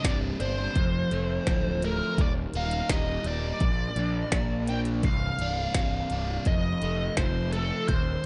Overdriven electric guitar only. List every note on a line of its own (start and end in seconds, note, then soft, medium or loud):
0.00 0.76 C2 medium
0.00 0.39 D4 medium
0.04 0.76 C3 medium
0.40 0.76 D4 medium
0.77 2.19 F2 medium
1.12 1.83 A3 medium
1.48 2.19 F3 medium
1.84 2.19 A3 medium
2.20 3.62 D#2 medium
2.55 3.25 D#4 medium
2.90 3.62 G3 medium
3.26 3.62 D#4 medium
3.62 5.04 A#2 medium
3.98 4.69 D4 medium
4.34 5.05 A#3 medium
4.70 5.05 D4 medium
5.06 6.47 C2 medium
5.41 6.10 D4 medium
5.76 6.47 C3 medium
6.12 6.47 D4 medium
6.47 7.90 F2 medium
6.83 7.53 A3 medium
7.19 7.90 F3 medium
7.54 7.90 A3 medium
7.90 8.26 D#2 medium